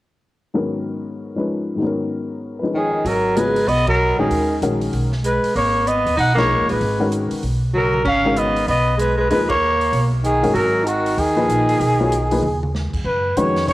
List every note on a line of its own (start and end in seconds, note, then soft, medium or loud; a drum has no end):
0.54 1.74 G#2 soft
0.54 1.76 D#3 soft
0.54 1.78 F#3 soft
0.54 1.80 B3 soft
0.54 1.35 C#4 soft
0.54 1.81 A#4 soft
1.35 1.79 F3 soft
1.35 1.80 G#3 soft
1.35 1.80 C#4 soft
1.35 1.80 D#4 soft
1.35 1.81 B4 soft
1.76 3.03 G#2 soft
1.76 3.04 D#3 soft
1.80 3.05 F#3 soft
1.80 3.06 B3 soft
1.84 2.61 C#4 soft
1.84 3.08 A#4 soft
2.59 3.05 F3 soft
2.59 3.05 G#3 soft
2.59 3.05 C#4 soft
2.59 2.63 B4 soft
2.63 3.06 D#4 soft
2.63 3.06 B4 soft
2.74 3.07 D#3 medium
2.74 3.10 G#4 medium
2.74 2.98 C#5 soft
2.90 3.12 D#5 soft
3.05 3.64 G#1 medium
3.05 3.38 F#3 medium
3.05 3.41 A#4 medium
3.05 open hi-hat soft
3.36 3.54 C#3 medium
3.36 3.54 F#3 soft
3.36 3.69 G#3 medium
3.36 3.54 B3 soft
3.36 3.54 F4 soft
3.36 3.54 G#4 medium
3.36 3.70 B4 medium
3.36 closed hi-hat soft
3.56 open hi-hat soft
3.68 4.15 B1 medium
3.68 3.87 B3 medium
3.68 3.87 D#5 medium
3.68 open hi-hat soft
3.87 4.16 F#3 medium
3.87 4.17 A#4 medium
3.87 kick medium
3.87 ride medium
4.18 4.29 A#1 medium
4.18 4.59 D#3 medium
4.18 4.59 G#3 soft
4.18 4.59 C#4 medium
4.18 4.59 F#4 soft
4.18 4.59 G#4 medium
4.18 4.59 A#4 medium
4.31 4.59 D#2 medium
4.31 open hi-hat soft
4.62 4.91 A#1 medium
4.62 5.09 D#3 medium
4.62 5.09 G#3 medium
4.62 5.09 C#4 medium
4.62 5.09 F#4 medium
4.62 5.09 A#4 medium
4.62 closed hi-hat soft
4.81 open hi-hat soft
4.93 5.40 B1 medium
4.93 open hi-hat soft
5.12 snare soft
5.24 5.53 G#3 medium
5.24 5.54 B4 medium
5.24 closed hi-hat soft
5.44 open hi-hat soft
5.55 6.02 G#1 medium
5.55 5.88 A#3 medium
5.55 5.89 C#5 medium
5.55 open hi-hat soft
5.86 6.16 B3 medium
5.86 6.18 D#5 medium
5.86 closed hi-hat soft
6.06 6.17 D#2 medium
6.06 open hi-hat soft
6.17 6.57 B1 medium
6.17 6.34 D#4 medium
6.17 6.36 F#5 medium
6.17 open hi-hat soft
6.35 6.78 A#2 medium
6.35 6.78 F3 medium
6.35 6.65 A#3 medium
6.35 6.78 D#4 medium
6.35 6.78 G#4 medium
6.35 6.78 A#4 medium
6.35 6.67 C#5 medium
6.35 snare medium
6.35 ride soft
6.60 6.69 C#2 medium
6.69 6.80 A1 medium
6.69 7.09 G#3 medium
6.69 7.10 B4 medium
6.69 open hi-hat soft
6.81 7.28 G#1 medium
6.81 open hi-hat soft
7.00 7.40 D#3 medium
7.00 7.41 G#3 medium
7.00 7.41 C#4 medium
7.00 7.41 F#4 medium
7.00 7.41 A#4 medium
7.12 closed hi-hat soft
7.31 muted upright bass stroke soft
7.31 open hi-hat soft
7.43 8.02 B1 medium
7.43 open hi-hat soft
7.74 8.03 F#3 medium
7.74 8.05 A#4 medium
7.74 mid tom soft
7.93 mid tom medium
8.04 8.65 G#1 medium
8.04 8.38 C#4 medium
8.04 8.40 F5 medium
8.04 kick medium
8.04 crash medium
8.25 8.66 D#3 medium
8.25 8.66 G#3 medium
8.25 8.66 C#4 medium
8.25 8.66 F#4 soft
8.25 8.66 A#4 medium
8.36 8.67 B3 medium
8.36 8.69 D#5 medium
8.36 closed hi-hat soft
8.56 open hi-hat soft
8.68 9.27 B1 medium
8.68 8.97 B3 medium
8.68 8.98 D#5 medium
8.68 open hi-hat soft
8.97 9.16 G#3 medium
8.97 9.18 B4 medium
8.97 closed hi-hat soft
9.17 9.29 G#3 medium
9.17 9.30 B4 medium
9.30 9.90 D#2 medium
9.30 9.48 F3 medium
9.30 9.48 G#3 medium
9.30 9.48 A#3 medium
9.30 9.48 D#4 medium
9.30 9.48 G#4 medium
9.30 9.48 B4 medium
9.30 open hi-hat soft
9.48 10.08 A#3 medium
9.48 10.09 C#5 medium
9.48 kick medium
9.48 ride medium
9.81 open hi-hat soft
9.92 10.40 B1 medium
9.92 open hi-hat soft
10.23 10.53 D#3 medium
10.23 10.53 G#4 medium
10.23 closed hi-hat soft
10.43 10.54 G1 medium
10.43 10.54 D#3 medium
10.43 10.54 G#3 medium
10.43 10.54 C#4 soft
10.43 10.54 F#4 medium
10.43 10.54 A#4 medium
10.43 open hi-hat soft
10.54 11.14 G#1 medium
10.54 10.85 F#3 medium
10.54 10.88 A#4 medium
10.54 open hi-hat soft
10.84 11.17 D#3 medium
10.84 11.21 F#4 medium
10.84 closed hi-hat soft
11.06 open hi-hat soft
11.17 11.47 D#2 medium
11.17 12.73 D#3 medium
11.17 12.75 G#4 medium
11.17 open hi-hat soft
11.36 11.78 A#2 medium
11.36 11.78 F3 medium
11.36 11.78 D#4 medium
11.36 11.78 G#4 medium
11.36 11.78 B4 medium
11.49 11.78 A#1 medium
11.49 closed hi-hat soft
11.69 open hi-hat soft
11.80 12.40 B1 medium
11.80 open hi-hat soft
12.00 12.11 F#3 medium
12.00 12.11 B3 soft
12.00 12.11 F4 medium
12.00 12.11 A#4 soft
12.00 12.11 C#5 medium
12.12 closed hi-hat soft
12.31 12.42 F3 medium
12.31 12.42 A#3 medium
12.31 12.42 D#4 medium
12.31 12.42 G#4 medium
12.31 12.42 B4 medium
12.31 open hi-hat soft
12.43 12.90 D#2 medium
12.43 mid tom soft
12.63 mid tom soft
12.75 snare soft
12.93 13.04 F2 medium
12.93 kick medium
12.93 crash medium
13.05 13.34 F#2 medium
13.05 13.39 B4 medium
13.37 13.66 F2 medium
13.37 13.73 D#3 medium
13.37 13.73 G#3 medium
13.37 13.73 C#4 medium
13.37 13.73 F#4 medium
13.37 13.73 B4 medium
13.37 13.68 C#5 medium
13.37 closed hi-hat soft
13.56 snare medium
13.56 open hi-hat soft
13.67 13.73 C#2 medium
13.67 13.73 C#5 medium
13.67 open hi-hat soft